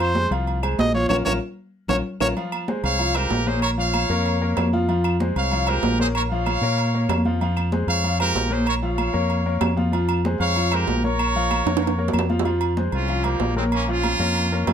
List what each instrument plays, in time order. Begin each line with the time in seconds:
Already playing: fingered electric bass F2, upright piano F5
0.00 trumpet C5, low agogo
0.15 upright piano G#3 G#4 C5, high conga, low timbale
0.31 fingered electric bass C2, upright piano F3 F4 F5, low agogo
0.47 high conga, low agogo
0.62 upright piano G#3 G#4 C5, high conga, low agogo, claves
0.78 fingered electric bass A#1, trumpet D#5, high conga, low timbale
0.94 upright piano F3 F4 F5, trumpet C#5, high conga
1.09 fingered electric bass A#1, upright piano C#4 F4 A#4, trumpet C#5, low conga, high timbale, claves
1.25 fingered electric bass A#1, upright piano C#4 F4 A#4, trumpet C#5, low conga, high timbale, claves
1.88 fingered electric bass A#1, upright piano C#4 F4 A#4, trumpet C#5, low conga, high timbale, claves
2.20 fingered electric bass A#1, upright piano C#4 F4 A#4, trumpet C#5, low conga, high timbale, claves
2.37 upright piano F3 F4 F5, high conga, low agogo
2.52 high conga, low agogo, claves
2.68 upright piano G#3 G#4 C5, high conga, low timbale
2.83 fingered electric bass C2, trumpet section C#5 F5, low agogo
2.99 upright piano F3 F4 F5, high conga, low agogo
3.15 upright piano G#3 F4 C5, trumpet section G4 A#4, high conga, low agogo, claves
3.30 fingered electric bass A#1, high conga, low timbale
3.47 upright piano A#3 A#4 C#5, trumpet section G#4 C5, high conga
3.62 trumpet section A#4 C#5, low agogo, claves
3.78 upright piano F3 F4 F5, trumpet section C#5 F5, high conga
3.94 high conga, low timbale, low agogo, claves
4.09 fingered electric bass F2, upright piano A#3 A#4 C#5
4.26 high conga, low agogo
4.42 upright piano A#3 A#4 C#5, high conga
4.57 fingered electric bass F2, high conga, low timbale, low agogo, claves
4.73 upright piano F3 F4 F5, high conga
4.88 upright piano F3 F4 F5, high conga, low agogo
5.04 high conga, low agogo, claves
5.20 upright piano G#3 G#4 C5, high conga, low timbale
5.36 fingered electric bass C2, trumpet section C#5 F5, low agogo
5.51 upright piano F3 F4 F5, high conga, low agogo
5.67 upright piano G#3 F4 C5, trumpet section G4 A#4, high conga, low agogo, claves
5.83 fingered electric bass A#1, high conga, low timbale
5.99 upright piano A#3 A#4 C#5, trumpet section G#4 C5, high conga
6.15 trumpet section A#4 C#5, low agogo, claves
6.31 upright piano F3 F4 F5, trumpet section C#5 F5, high conga
6.46 high conga, low timbale, low agogo, claves
6.61 fingered electric bass A#2, upright piano A#3 A#4 C#5, high conga
6.78 high conga, low agogo
6.94 upright piano A#3 A#4 C#5, high conga
7.09 fingered electric bass F2, high conga, low timbale, low agogo, claves
7.25 upright piano F3 F4 F5, high conga
7.41 upright piano F3 F4 F5, high conga, low agogo
7.57 high conga, low agogo, claves
7.72 upright piano G#3 G#4 C5, high conga, low timbale
7.87 fingered electric bass F2, trumpet section C#5 F5, low agogo
8.04 upright piano F3 F4 F5, high conga, low agogo
8.19 upright piano G#3 F4 C5, trumpet section G4 A#4, high conga, low agogo, claves
8.35 fingered electric bass A#1, high conga, low timbale
8.50 upright piano A#3 A#4 C#5, trumpet section G#4 C5, high conga
8.67 trumpet section A#4 C#5, low agogo, claves
8.82 upright piano F3 F4 F5, trumpet section C#5 F5, high conga
8.98 high conga, low timbale, low agogo, claves
9.13 fingered electric bass F2, upright piano A#3 A#4 C#5, high conga
9.30 high conga, low agogo
9.46 upright piano A#3 A#4 C#5, high conga
9.61 fingered electric bass F2, high conga, low timbale, low agogo, claves
9.77 upright piano F3 F4 F5, high conga
9.92 upright piano F3 F4 F5, high conga, low agogo
10.09 high conga, low agogo, claves
10.25 upright piano G#3 G#4 C5, high conga, low timbale
10.40 fingered electric bass F2, trumpet section C#5 F5, low agogo
10.56 upright piano F3 F4 F5, high conga, low agogo
10.71 upright piano G#3 F4 C5, trumpet section G4 A#4, high conga, low agogo, claves
10.87 fingered electric bass A#1, high conga, low timbale
11.04 upright piano A#3 A#4 C#5, trumpet section A#4 C#5, high conga
11.19 high conga, low agogo, claves
11.35 upright piano F3 F4 F5, high conga
11.51 high conga, low timbale, low agogo, claves
11.66 fingered electric bass F2, upright piano A#3 A#4 C#5, high conga, high timbale
11.77 high timbale
11.82 high conga, low agogo
11.87 high timbale
11.98 upright piano A#3 A#4 C#5, high conga
12.08 low timbale
12.13 fingered electric bass F2, high conga, low agogo, claves
12.19 low timbale
12.29 upright piano F3 F4 F5, high conga
12.39 low timbale
12.45 upright piano F3 F4 F5, high conga, low agogo
12.61 high conga, low agogo
12.77 upright piano G#3 G#4 C5, high conga, low timbale
12.92 fingered electric bass C2, trumpet section C#4 F4, low agogo
13.08 upright piano F3 F4 F5, high conga, low agogo
13.24 upright piano F3 F4 C5, trumpet section G3 A#3, high conga, low agogo
13.40 fingered electric bass A#1, high conga, low timbale
13.56 trumpet section G#3 C4, upright piano A#3 A#4 C#5, high conga
13.72 trumpet section A#3 C#4, high conga, low agogo
13.88 upright piano F3 F4 F5, trumpet section C#4 F4, high conga
14.04 high conga, low timbale, low agogo
14.19 fingered electric bass F2, upright piano A#3 A#4 C#5, high conga
14.35 high conga, low agogo
14.52 upright piano A#3 A#4 C#5, high conga
14.67 fingered electric bass F2, high conga, low timbale, low agogo